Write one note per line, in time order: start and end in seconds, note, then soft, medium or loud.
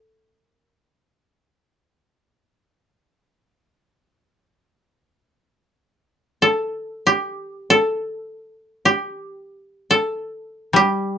0.00 0.45 A4 soft
0.45 0.84 A#4 soft
0.84 1.25 A4 soft
1.25 1.64 A#4 soft
1.64 3.05 A4 soft
6.42 7.70 A4 medium
7.07 8.85 G4 medium
7.70 9.61 A4 medium
8.85 10.76 G4 medium
9.91 11.18 A4 medium
10.73 11.18 G3 soft
10.73 11.18 G4 medium